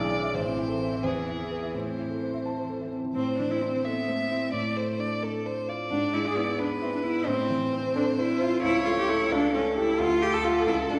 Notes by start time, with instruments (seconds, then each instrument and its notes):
Already playing: grand piano B1 D4 E4, cello E3, violin D5
0.00 grand piano G#4
0.12 grand piano D5
0.23 grand piano E5
0.34 grand piano A1, cello E3, violin C5
0.46 grand piano C4
0.57 grand piano E4
0.69 grand piano A4
0.81 grand piano C5
0.92 grand piano E5
1.04 grand piano E2, violin G#4
1.15 grand piano B3
1.27 grand piano E4
1.39 grand piano G#4
1.51 grand piano B4
1.63 grand piano E5
1.75 grand piano A2, violin C5
1.87 grand piano C4
1.98 grand piano E4
2.10 grand piano A4
2.22 grand piano C5
2.34 grand piano E5
2.46 grand piano A5
2.58 grand piano C5
2.69 grand piano A4
2.81 grand piano E4
2.93 grand piano C4
3.04 grand piano E3
3.15 grand piano A2, cello C4, violin C5
3.38 grand piano E3, cello D4
3.51 cello E4
3.61 cello C4, grand piano C4
3.84 cello B3, grand piano A4, violin E5
4.08 cello A3, grand piano C5
4.20 cello B3
4.30 cello C4, grand piano E4
4.53 grand piano A2, cello A3, violin D5
4.76 grand piano A3, violin C5
4.99 grand piano D4, violin D5
5.23 grand piano A4, violin A4
5.45 violin C5, grand piano D5
5.68 grand piano F4, violin D5
5.91 grand piano G#2, cello D4
6.13 grand piano G#3, cello E4
6.27 cello G#4
6.37 grand piano B3, cello E4
6.59 cello D4, grand piano B4, violin B4
6.82 cello C4, grand piano E4
6.94 cello D4
7.04 grand piano B3, cello E4
7.27 grand piano A2, cello C4, violin C5
7.50 grand piano E3
7.73 grand piano C4
7.95 cello D4, grand piano A4
8.18 cello E4, grand piano C5
8.41 grand piano E4, cello F4
8.62 grand piano C#2, cello E4, violin C#5
8.85 grand piano A3, cello F4
8.98 cello G4
9.09 cello E4, grand piano E4 A4
9.32 grand piano C#2, cello D4, violin A4
9.54 grand piano A3, cello C#4
9.77 cello E4, grand piano G4 A4
9.98 grand piano D2, cello F4, violin A4
10.22 grand piano A3, cello G4
10.33 cello A4
10.44 cello F4, grand piano F4 A4
10.67 grand piano C#2, cello E4
10.90 grand piano A3, cello D4